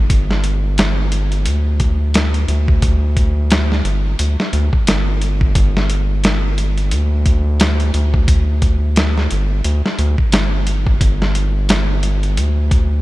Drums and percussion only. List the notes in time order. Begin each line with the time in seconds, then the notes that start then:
0.10 kick, closed hi-hat
0.31 snare
0.44 closed hi-hat
0.78 snare, closed hi-hat
1.12 closed hi-hat
1.32 closed hi-hat
1.46 closed hi-hat
1.80 kick, closed hi-hat
2.14 snare, closed hi-hat
2.34 closed hi-hat
2.48 closed hi-hat
2.68 kick
2.82 kick, closed hi-hat
3.17 kick, closed hi-hat
3.51 snare, closed hi-hat
3.72 snare
3.85 closed hi-hat
4.19 closed hi-hat
4.40 snare
4.53 closed hi-hat
4.73 kick
4.87 snare, closed hi-hat
5.22 closed hi-hat
5.41 kick
5.55 kick, closed hi-hat
5.77 snare
5.90 closed hi-hat
6.24 snare, closed hi-hat
6.58 closed hi-hat
6.78 closed hi-hat
6.91 closed hi-hat
7.26 kick, closed hi-hat
7.60 snare, closed hi-hat
7.80 closed hi-hat
7.94 closed hi-hat
8.14 kick
8.28 kick, closed hi-hat
8.62 kick, closed hi-hat
8.96 snare, closed hi-hat
9.18 snare
9.31 closed hi-hat
9.64 closed hi-hat
9.86 snare
9.99 closed hi-hat
10.18 kick
10.32 snare, closed hi-hat
10.67 closed hi-hat
10.87 kick
11.01 kick, closed hi-hat
11.22 snare
11.35 closed hi-hat
11.69 snare, closed hi-hat
12.03 closed hi-hat
12.23 closed hi-hat
12.37 closed hi-hat
12.71 kick, closed hi-hat